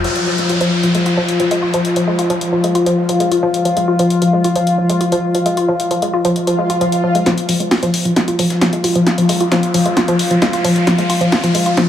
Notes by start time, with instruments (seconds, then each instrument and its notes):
0.04 synth arpeggio sound F3, synth drone F3 F4, closed hi-hat, downlifter
0.16 closed hi-hat
0.27 synth arpeggio sound F3
0.38 synth arpeggio sound G#3, closed hi-hat
0.49 synth arpeggio sound F4, closed hi-hat
0.61 synth arpeggio sound F3, closed hi-hat
0.83 synth arpeggio sound F3, closed hi-hat
0.95 synth arpeggio sound G#3, closed hi-hat
1.06 synth arpeggio sound F4, closed hi-hat
1.17 synth arpeggio sound F3
1.29 closed hi-hat
1.40 synth arpeggio sound F3, closed hi-hat
1.51 synth arpeggio sound G#3, closed hi-hat
1.62 synth arpeggio sound F4
1.74 synth arpeggio sound F3, closed hi-hat
1.85 closed hi-hat
1.96 synth arpeggio sound F3, closed hi-hat
2.08 synth arpeggio sound G#3
2.19 synth arpeggio sound F4, closed hi-hat
2.30 synth arpeggio sound F3, closed hi-hat
2.41 closed hi-hat
2.53 synth arpeggio sound F3
2.64 synth arpeggio sound G#3, closed hi-hat
2.75 synth arpeggio sound F4, closed hi-hat
2.86 synth arpeggio sound F3, closed hi-hat
3.09 synth arpeggio sound F3, closed hi-hat
3.20 synth arpeggio sound G#3, closed hi-hat
3.32 synth arpeggio sound F4, closed hi-hat
3.43 synth arpeggio sound F3
3.54 closed hi-hat
3.65 synth arpeggio sound F3, closed hi-hat
3.77 synth arpeggio sound G#3, closed hi-hat
3.88 synth arpeggio sound F4
3.99 synth arpeggio sound F3, closed hi-hat
4.10 closed hi-hat
4.22 synth arpeggio sound F3, closed hi-hat
4.33 synth arpeggio sound G#3
4.44 synth arpeggio sound F4, closed hi-hat
4.56 synth arpeggio sound F3, closed hi-hat
4.67 closed hi-hat
4.78 synth arpeggio sound F3
4.90 synth arpeggio sound G#3, closed hi-hat
5.01 synth arpeggio sound F4, closed hi-hat
5.12 synth arpeggio sound F3, closed hi-hat
5.35 synth arpeggio sound F3, closed hi-hat
5.46 synth arpeggio sound G#3, closed hi-hat
5.57 synth arpeggio sound F4, closed hi-hat
5.68 synth arpeggio sound F3
5.80 closed hi-hat
5.91 synth arpeggio sound F3, closed hi-hat
6.02 synth arpeggio sound G#3, closed hi-hat
6.14 synth arpeggio sound F4
6.25 synth arpeggio sound F3, closed hi-hat
6.36 closed hi-hat, swell
6.47 synth arpeggio sound F3, closed hi-hat
6.59 synth arpeggio sound G#3
6.70 synth arpeggio sound F4, closed hi-hat
6.81 synth arpeggio sound F3, closed hi-hat
6.92 closed hi-hat
7.04 synth arpeggio sound F3
7.15 synth arpeggio sound G#3, closed hi-hat
7.26 synth arpeggio sound F3, synth drone F3 F4, snare, closed hi-hat, riser
7.37 closed hi-hat
7.49 synth arpeggio sound F3, closed hi-hat, open hi-hat
7.60 synth arpeggio sound G#3, closed hi-hat
7.71 synth arpeggio sound F4, snare, closed hi-hat, open hi-hat
7.83 synth arpeggio sound F3, closed hi-hat
7.94 closed hi-hat, open hi-hat
8.05 synth arpeggio sound F3, closed hi-hat
8.16 synth arpeggio sound G#3, snare, closed hi-hat
8.28 synth arpeggio sound F4, closed hi-hat
8.39 synth arpeggio sound F3, closed hi-hat, open hi-hat
8.50 snare, closed hi-hat
8.61 synth arpeggio sound F3, snare, closed hi-hat
8.73 synth arpeggio sound G#3, closed hi-hat
8.84 synth arpeggio sound F4, closed hi-hat, open hi-hat
8.95 synth arpeggio sound F3, closed hi-hat
9.07 snare, closed hi-hat
9.18 synth arpeggio sound F3, closed hi-hat
9.29 synth arpeggio sound G#3, closed hi-hat, open hi-hat
9.40 synth arpeggio sound F4, closed hi-hat
9.52 synth arpeggio sound F3, snare, closed hi-hat
9.63 closed hi-hat
9.74 synth arpeggio sound F3, closed hi-hat, open hi-hat
9.86 synth arpeggio sound G#3, closed hi-hat
9.97 synth arpeggio sound F4, snare, closed hi-hat
10.08 synth arpeggio sound F3, closed hi-hat
10.19 closed hi-hat, open hi-hat
10.31 synth arpeggio sound F3, closed hi-hat
10.42 synth arpeggio sound G#3, snare, closed hi-hat
10.53 synth arpeggio sound F4, snare, closed hi-hat
10.65 synth arpeggio sound F3, snare, closed hi-hat, open hi-hat
10.76 snare, closed hi-hat
10.87 synth arpeggio sound F3, snare, closed hi-hat
10.98 synth arpeggio sound G#3, closed hi-hat
11.10 synth arpeggio sound F4, closed hi-hat, open hi-hat
11.21 synth arpeggio sound F3, closed hi-hat
11.32 snare, closed hi-hat, open hi-hat
11.43 synth arpeggio sound F3, closed hi-hat
11.55 synth arpeggio sound G#3, closed hi-hat, open hi-hat
11.66 synth arpeggio sound F4, closed hi-hat
11.77 synth arpeggio sound F3, snare, closed hi-hat